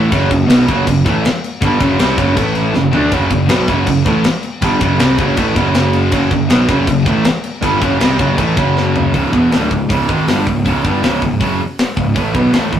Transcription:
Already playing: A1 A2 E3 A3
0.11 F#1 F#2 C#3 F#3, kick, crash
0.31 F#1 F#2 C#3, kick, crash
0.47 B1 B2 F#3 B3, snare, crash
0.67 F#1 F#2 C#3 F#3, kick, crash
0.86 F#1 F#2 C#3, kick, crash
1.04 A1 A2 E3 A3, kick, crash
1.25 snare, crash
1.44 crash
1.61 G1 G2 D3 G3, kick, crash
1.80 F#1 F#2 C#3 F#3, kick, crash
1.98 C2 C3 G3 C4, snare, crash
2.17 F#1 F#2 C#3 F#3, kick, crash
2.36 A1 A2 E3 A3, kick, crash
2.55 crash
2.74 F#1 F#2 C#3, snare
2.92 D2 D3 A3 D4, floor tom
3.11 F#1 F#2 C#3 F#3, kick, crash
3.30 F#1 F#2 C#3, kick, crash
3.49 B1 B2 F#3 B3, snare, crash
3.68 F#1 F#2 C#3 F#3, kick, crash
3.87 F#1 F#2 C#3, kick, crash
4.05 A1 A2 E3 A3, kick, crash
4.24 snare, crash
4.43 crash
4.62 G1 G2 D3 G3, kick, crash
4.81 F#1 F#2 C#3 F#3, kick, crash
4.99 C2 C3 G3 C4, snare, crash
5.18 F#1 F#2 C#3 F#3, kick, crash
5.37 A1 A2 E3 A3, kick, crash
5.56 F#1 F#2 C#3 F#3, kick, crash
5.74 snare, crash
5.93 crash
6.12 F#1 F#2 C#3 F#3, kick, crash
6.31 F#1 F#2 C#3, kick, crash
6.49 B1 B2 F#3 B3, snare, crash
6.68 F#1 F#2 C#3 F#3, kick, crash
6.87 F#1 F#2 C#3, kick, crash
7.06 A1 A2 E3 A3, kick, crash
7.24 snare, crash
7.44 crash
7.62 G1 G2 D3 G3, kick, crash
7.81 F#1 F#2 C#3 F#3, kick, crash
8.00 C2 C3 G3 C4, snare, crash
8.19 F#1 F#2 C#3 F#3, kick, crash
8.37 A1 A2 E3 A3, kick, crash
8.57 F#1 F#2 C#3 F#3, kick, crash
8.77 snare
8.96 floor tom
9.14 C#1 C#2 G#2 C#3, kick, open hi-hat
9.32 E1 E2 B2 E3, kick
9.51 D1 D2 A2 D3, snare, open hi-hat
9.71 C#1 C#2 G#2, kick
9.89 C#1 C#2 G#2 C#3, kick, open hi-hat
10.07 G#1 G#2 D#3 G#3, kick
10.26 G1 G2 D3 G3, snare, open hi-hat
10.46 C#1 C#2 G#2, kick
10.64 C#1 C#2 G#2 C#3, kick, open hi-hat
10.83 G1 G2 D3 G3, kick
11.01 C#1 C#2 G#2 C#3, snare, open hi-hat
11.21 C#1 C#2 G#2, kick
11.40 F#1 F#2 C#3 F#3, kick, open hi-hat
11.78 snare, open hi-hat
11.97 C#1 C#2 G#2, kick
12.14 A1 A2 E3 A3, kick, open hi-hat
12.34 B1 B2 F#3 B3, kick
12.52 A1 A2 E3 A3, snare, open hi-hat
12.71 A1 A2 E3, kick

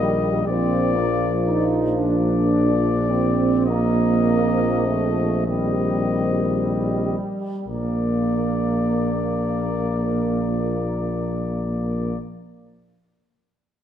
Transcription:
Already playing: A#1 D#3 G3 A#3 D#5
0.47 A#1 F3 A#3 C4 D5
0.96 A#3
1.45 D#4
1.98 D4 D5
3.10 C4
3.66 F3 A#3 C4 D#5
4.85 A3
5.47 D#3 G3 C4 D#5
7.67 A#1 F3 A#3 D5

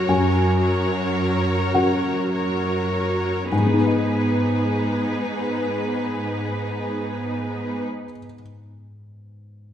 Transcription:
Already playing: F#3 C#4 F#4 A#4 C#5 A#5
0.09 F#2 G#5
0.63 F#3 F#4 A#4 C#5
1.74 F#2 C#4 F#4 A#4 F#5
2.33 F#3 F#4 A#4 C#5
3.52 G#2 B3 D#4 G#4 B4 G#5
3.59 G#3
3.66 B3
3.73 D#4
3.80 B4
3.87 D#5

